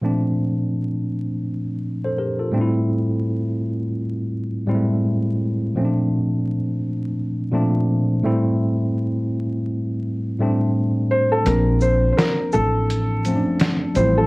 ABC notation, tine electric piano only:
X:1
M:4/4
L:1/16
Q:"Swing 16ths" 1/4=84
K:Bblyd
V:1 name="Tine electric piano"
z8 z3 [Ac] [GB] [FA]2 z | z16 | z16 | z16 |
z16 |]
V:2 name="Tine electric piano"
[B,,F,A,CD]8 z6 [A,,G,A,CDE]2- | [A,,G,A,CDE]6 z4 [A,,G,_A,=A,CE]6 | [B,,F,A,C_D=D]8 z2 [B,,F,A,CD]4 [A,,G,A,CE]2- | [A,,G,A,CE]6 z4 [A,,G,A,CD]6 |
[F,B,CD]8 z2 [F,A,C_D=D]4 [F,G,CE]2 |]